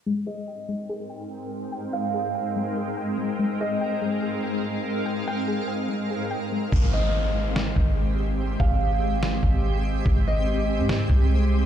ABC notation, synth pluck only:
X:1
M:4/4
L:1/8
Q:1/4=144
K:Ab
V:1 name="Synth pluck"
A, A g A, A g3 | g2 A g A, A g A, | A, A g A, A g3 | g2 A g A, A g A, |
z8 | z8 | z8 |]